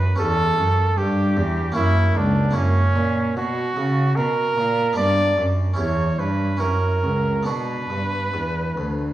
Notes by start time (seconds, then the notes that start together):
Already playing: F#2 G4 B4
0.16 E2 C#4 G4 A4
0.58 F#2
0.97 G2 G4
1.37 E2
1.72 A#3 C#4 E4 F#4
1.76 F#2
2.15 C#2 D4
2.51 A#3 E4 F#4
2.55 F#2 C#4
2.96 A#2
3.37 B2 F#4
3.77 C#3
4.16 B2 A#4
4.57 A#2
4.93 B3 D4 B4
4.97 G2 D5
5.37 F#2
5.74 C#4 E4 G4
5.78 E2 C#5
6.19 G2 B4
6.57 F#2 C#4 E4 F#4 A#4
6.62 F#2
7.03 C#2
7.43 B3 D4 F#4 B4
7.47 B2
7.90 G2
8.34 E2
8.77 D2